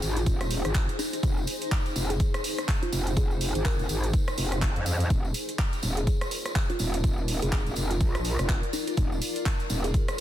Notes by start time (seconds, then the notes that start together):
Already playing: D#4 G#4 C5
0.02 G#1, open hi-hat, tambourine
0.16 F4, closed hi-hat, tambourine
0.26 D#1, kick, closed hi-hat, tambourine
0.41 cross-stick, closed hi-hat, tambourine
0.51 open hi-hat, tambourine
0.65 G#1, cross-stick, closed hi-hat, tambourine
0.74 kick, clap, closed hi-hat, tambourine
0.89 closed hi-hat
0.99 D#4, open hi-hat, tambourine
1.13 D#4, closed hi-hat, tambourine
1.23 F1, kick, closed hi-hat, tambourine
1.37 tambourine
1.47 open hi-hat, tambourine
1.62 closed hi-hat, tambourine
1.72 kick, clap, closed hi-hat, tambourine
1.86 closed hi-hat, tambourine
1.96 F1, open hi-hat, tambourine
2.10 G#4, closed hi-hat, tambourine
2.20 kick, closed hi-hat, tambourine
2.34 cross-stick, closed hi-hat, tambourine
2.44 open hi-hat, tambourine
2.58 cross-stick, closed hi-hat, tambourine
2.68 kick, clap, closed hi-hat, tambourine
2.83 F4, closed hi-hat
2.93 F1, open hi-hat, tambourine
3.07 closed hi-hat, tambourine
3.17 F1 G#4, kick, closed hi-hat, tambourine
3.31 tambourine
3.41 open hi-hat, tambourine
3.55 G#1, closed hi-hat, tambourine
3.65 A#4, kick, clap, closed hi-hat, tambourine
3.79 F1, closed hi-hat, tambourine
3.89 G#1, open hi-hat, tambourine
4.03 closed hi-hat, tambourine
4.13 kick, closed hi-hat, tambourine
4.28 cross-stick, closed hi-hat, tambourine
4.38 F1, open hi-hat, tambourine
4.52 cross-stick, closed hi-hat, tambourine
4.62 kick, clap, closed hi-hat, tambourine
4.76 F2, closed hi-hat
4.86 open hi-hat, tambourine
5.00 closed hi-hat, tambourine
5.10 D#1 F4, kick, closed hi-hat, tambourine
5.25 tambourine
5.30 A#4
5.34 open hi-hat, tambourine
5.49 closed hi-hat, tambourine
5.59 kick, clap, closed hi-hat, tambourine
5.73 closed hi-hat, tambourine
5.81 D#1 D5, open hi-hat, tambourine
5.97 G#4, closed hi-hat, tambourine
6.07 kick, closed hi-hat, tambourine
6.21 cross-stick, closed hi-hat, tambourine
6.31 open hi-hat, tambourine
6.46 cross-stick, closed hi-hat, tambourine
6.55 kick, clap, closed hi-hat
6.70 F4, closed hi-hat
6.79 D#1, open hi-hat, tambourine
6.94 closed hi-hat, tambourine
7.04 D#1, kick, closed hi-hat, tambourine
7.18 tambourine
7.28 open hi-hat, tambourine
7.42 F1 G#4, closed hi-hat, tambourine
7.52 kick, clap, closed hi-hat, tambourine
7.67 D#1, closed hi-hat, tambourine
7.76 F1, open hi-hat, tambourine
7.91 F4, closed hi-hat, tambourine
8.01 A#1, kick, closed hi-hat, tambourine
8.15 cross-stick, closed hi-hat, tambourine
8.24 open hi-hat, tambourine
8.39 F1, cross-stick, closed hi-hat, tambourine
8.49 kick, clap, closed hi-hat, tambourine
8.63 closed hi-hat
8.73 D#4, open hi-hat, tambourine
8.87 D#4, closed hi-hat, tambourine
8.97 D#1, kick, closed hi-hat, tambourine
9.12 tambourine
9.22 open hi-hat, tambourine
9.36 closed hi-hat, tambourine
9.45 kick, clap, closed hi-hat, tambourine
9.59 closed hi-hat, tambourine
9.70 D#1, open hi-hat, tambourine
9.84 G#4, closed hi-hat, tambourine
9.94 kick, closed hi-hat, tambourine
10.08 cross-stick, closed hi-hat, tambourine